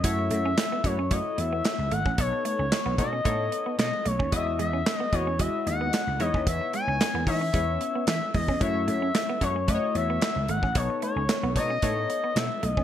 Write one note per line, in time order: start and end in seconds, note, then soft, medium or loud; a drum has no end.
0.03 0.26 F#2 loud
0.03 0.51 A3 medium
0.03 0.51 E4 medium
0.03 0.51 F#4 medium
0.03 0.51 C#5 medium
0.03 0.30 E5 medium
0.03 kick loud
0.03 closed hi-hat loud
0.19 muted clean electric guitar stroke soft
0.31 0.53 F#2 medium
0.31 0.40 A3 medium
0.31 0.87 E5 loud
0.31 closed hi-hat medium
0.45 0.54 C#4 medium
0.58 snare loud
0.58 clap medium
0.58 closed hi-hat medium
0.72 0.80 B3 medium
0.84 1.18 F#2 loud
0.84 0.98 A3 medium
0.84 0.98 E4 medium
0.84 0.98 F#4 medium
0.84 0.99 C#5 medium
0.84 1.14 C#5 medium
0.84 muted clean electric guitar stroke soft
0.84 kick medium
0.84 closed hi-hat medium
0.99 1.07 C#4 medium
1.11 1.74 A3 medium
1.11 1.21 A3 medium
1.11 1.74 E4 medium
1.11 1.74 F#4 medium
1.11 1.74 C#5 medium
1.11 1.40 D#5 medium
1.11 kick loud
1.11 closed hi-hat medium
1.38 1.60 E2 medium
1.38 1.94 E5 loud
1.38 muted clean electric guitar stroke soft
1.38 closed hi-hat medium
1.53 1.61 B3 medium
1.65 muted clean electric guitar stroke soft
1.65 snare loud
1.65 clap medium
1.65 closed hi-hat medium
1.79 1.89 C#2 medium
1.91 2.03 G#1 loud
1.91 2.01 A3 medium
1.91 2.19 F#5 loud
1.91 closed hi-hat medium
2.06 2.16 A1 medium
2.06 2.14 C#4 medium
2.06 kick loud
2.18 2.30 B1 loud
2.18 2.65 B3 medium
2.18 2.65 D#4 medium
2.18 2.66 A4 medium
2.18 2.66 C#5 medium
2.18 2.44 C#5 loud
2.18 kick loud
2.18 closed hi-hat loud
2.33 muted clean electric guitar stroke soft
2.45 2.54 A3 medium
2.45 2.95 C#5 loud
2.45 closed hi-hat medium
2.59 2.70 C#2 medium
2.59 2.68 C#4 medium
2.72 snare loud
2.72 clap medium
2.72 closed hi-hat medium
2.86 3.00 B1 medium
2.86 2.94 B3 medium
2.98 3.21 B2 loud
2.98 3.12 B3 medium
2.98 3.12 D#4 medium
2.98 3.13 A4 medium
2.98 3.13 C#5 medium
2.98 3.76 D#5 loud
2.98 muted clean electric guitar stroke soft
2.98 kick medium
2.98 closed hi-hat medium
3.13 3.21 C#4 medium
3.25 3.48 A2 medium
3.25 3.35 A3 medium
3.25 3.88 B3 medium
3.25 3.88 D#4 medium
3.25 3.88 A4 medium
3.25 3.88 C#5 medium
3.25 kick loud
3.25 closed hi-hat medium
3.52 muted clean electric guitar stroke soft
3.52 closed hi-hat medium
3.66 3.74 B3 medium
3.79 3.91 B2 loud
3.79 4.08 D#5 loud
3.79 muted clean electric guitar stroke soft
3.79 snare loud
3.79 clap medium
3.79 closed hi-hat medium
4.05 4.18 B1 medium
4.05 4.15 A3 medium
4.05 4.35 C#5 medium
4.05 closed hi-hat medium
4.19 4.30 D#2 medium
4.19 4.28 C#4 medium
4.19 kick loud
4.32 4.55 E2 loud
4.32 4.79 G#3 medium
4.32 4.80 E4 medium
4.32 4.80 F#4 medium
4.32 4.80 D#5 loud
4.32 4.59 E5 loud
4.32 kick loud
4.32 closed hi-hat loud
4.47 muted clean electric guitar stroke soft
4.59 4.82 E2 medium
4.59 4.68 G#3 medium
4.59 4.96 E5 medium
4.59 closed hi-hat medium
4.73 4.82 C#4 medium
4.86 snare loud
4.86 clap medium
4.86 closed hi-hat medium
4.96 5.15 D#5 medium
5.00 5.09 B3 medium
5.12 5.47 E2 medium
5.12 5.26 G#3 medium
5.12 5.27 E4 medium
5.12 5.27 F#4 medium
5.12 5.42 C#5 loud
5.12 5.27 D#5 medium
5.12 muted clean electric guitar stroke soft
5.12 kick medium
5.12 closed hi-hat medium
5.27 5.35 C#4 medium
5.39 6.02 G#3 medium
5.39 5.49 G#3 medium
5.39 6.02 E4 medium
5.39 6.02 F#4 medium
5.39 6.03 D#5 medium
5.39 5.67 E5 medium
5.39 kick loud
5.39 closed hi-hat medium
5.66 5.89 D#2 medium
5.66 6.23 F#5 loud
5.66 muted clean electric guitar stroke soft
5.66 closed hi-hat medium
5.81 5.89 B3 medium
5.93 muted clean electric guitar stroke soft
5.93 snare loud
5.93 clap medium
5.93 closed hi-hat medium
6.07 6.18 C#2 medium
6.19 6.32 E2 loud
6.19 6.30 G#3 medium
6.19 7.06 B3 medium
6.19 7.06 D#4 medium
6.19 7.06 E4 medium
6.19 7.06 C#5 medium
6.19 6.47 D#5 medium
6.19 closed hi-hat medium
6.34 6.45 D#2 medium
6.34 6.43 C#4 medium
6.34 kick medium
6.47 6.59 E2 loud
6.47 6.72 E5 loud
6.47 kick loud
6.47 closed hi-hat loud
6.61 muted clean electric guitar stroke soft
6.73 6.83 G#3 medium
6.73 7.24 G#5 loud
6.73 closed hi-hat medium
6.87 6.98 C#2 medium
6.87 6.96 C#4 medium
7.01 snare loud
7.01 clap medium
7.01 closed hi-hat medium
7.14 7.25 E2 loud
7.14 7.23 B3 medium
7.27 7.49 E3 medium
7.27 7.41 B3 medium
7.27 7.41 D#4 medium
7.27 7.41 E4 medium
7.27 7.41 C#5 medium
7.27 8.04 E5 loud
7.27 muted clean electric guitar stroke soft
7.27 kick medium
7.27 open hi-hat medium
7.41 7.50 C#4 medium
7.53 7.76 E2 medium
7.53 7.63 G#3 medium
7.53 8.16 B3 medium
7.53 8.16 C#4 medium
7.53 8.17 E4 medium
7.53 8.17 C#5 medium
7.53 kick loud
7.53 closed hi-hat medium
7.81 muted clean electric guitar stroke soft
7.81 closed hi-hat medium
7.95 8.04 B3 medium
8.07 8.19 E3 medium
8.07 8.33 E5 loud
8.07 muted clean electric guitar stroke soft
8.07 snare loud
8.07 clap medium
8.07 closed hi-hat medium
8.34 8.46 E2 medium
8.34 8.44 G#3 medium
8.34 8.60 D#5 medium
8.34 kick medium
8.34 open hi-hat medium
8.48 8.59 E2 medium
8.48 8.57 C#4 medium
8.48 kick medium
8.60 8.83 F#2 loud
8.60 9.08 A3 medium
8.60 9.08 E4 medium
8.60 9.08 F#4 medium
8.60 9.08 C#5 medium
8.60 8.87 E5 loud
8.60 kick loud
8.60 closed hi-hat loud
8.75 muted clean electric guitar stroke soft
8.88 9.10 F#2 medium
8.88 8.97 A3 medium
8.88 9.45 E5 loud
8.88 closed hi-hat medium
9.02 9.10 C#4 medium
9.15 snare loud
9.15 clap medium
9.15 closed hi-hat medium
9.29 9.38 B3 medium
9.41 9.76 F#2 medium
9.41 9.55 A3 medium
9.41 9.55 E4 medium
9.41 9.55 F#4 medium
9.41 9.56 C#5 medium
9.41 9.71 C#5 loud
9.41 muted clean electric guitar stroke soft
9.41 kick medium
9.41 closed hi-hat medium
9.56 9.64 C#4 medium
9.68 10.31 A3 medium
9.68 9.78 A3 medium
9.68 10.31 E4 medium
9.68 10.31 F#4 medium
9.68 9.75 B4 medium
9.68 9.96 D#5 medium
9.68 kick loud
9.68 closed hi-hat medium
9.75 10.34 C#5 medium
9.95 10.17 E2 medium
9.95 10.51 E5 loud
9.95 muted clean electric guitar stroke soft
9.95 closed hi-hat medium
10.10 10.18 B3 medium
10.22 muted clean electric guitar stroke soft
10.22 snare loud
10.22 clap medium
10.22 closed hi-hat medium
10.36 10.47 C#2 medium
10.48 10.60 G#1 loud
10.48 10.58 A3 medium
10.48 10.78 F#5 loud
10.48 closed hi-hat medium
10.63 10.73 A1 medium
10.63 10.71 C#4 medium
10.63 kick loud
10.75 10.87 B1 loud
10.75 11.22 B3 medium
10.75 11.22 D#4 medium
10.75 11.23 A4 medium
10.75 11.23 C#5 medium
10.75 11.03 C#5 medium
10.75 kick loud
10.75 closed hi-hat loud
10.90 muted clean electric guitar stroke soft
11.02 11.12 A3 medium
11.02 11.53 C#5 medium
11.02 closed hi-hat medium
11.16 11.27 C#2 medium
11.16 11.25 C#4 medium
11.29 snare loud
11.29 clap medium
11.29 closed hi-hat medium
11.43 11.57 B1 medium
11.43 11.52 B3 medium
11.56 11.78 B2 medium
11.56 11.70 B3 medium
11.56 11.70 D#4 medium
11.56 11.70 A4 medium
11.56 11.71 C#5 medium
11.56 12.39 D#5 loud
11.56 muted clean electric guitar stroke soft
11.56 kick medium
11.56 closed hi-hat medium
11.70 11.78 C#4 medium
11.82 12.05 A2 medium
11.82 11.92 A3 medium
11.82 12.45 B3 medium
11.82 12.45 D#4 medium
11.82 12.46 A4 medium
11.82 12.46 C#5 medium
11.82 kick loud
11.82 closed hi-hat medium
12.10 muted clean electric guitar stroke soft
12.10 closed hi-hat medium
12.24 12.32 B3 medium
12.36 12.48 B2 medium
12.36 12.66 E5 loud
12.36 muted clean electric guitar stroke soft
12.36 snare loud
12.36 clap medium
12.36 closed hi-hat medium
12.63 12.75 B1 medium
12.63 12.72 A3 medium
12.63 12.84 D#5 medium
12.63 closed hi-hat medium
12.77 12.84 D#2 medium
12.77 12.84 C#4 medium
12.77 kick medium